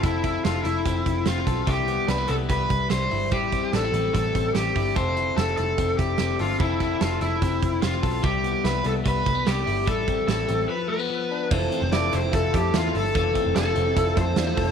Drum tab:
CC |--------|--------|--------|--------|
HH |xxxxxxxx|xxxxxxxo|xxxxxxxo|xxxxxxxo|
SD |--o-o-o-|--o-o-o-|--o---o-|--o---o-|
BD |oo--oo-o|o---oo--|oo--oo-o|o---oo--|

CC |--------|--------|--------|x-------|
HH |xxxxxxxo|xxxxxxxo|xxxx----|-xxxxxxo|
SD |--o---o-|--o---o-|--o-----|--o-o-o-|
BD |oo--oo-o|o---oo--|oo------|o---oo--|

CC |--------|
HH |xxxxxxxo|
SD |--o-o-o-|
BD |oo--oo-o|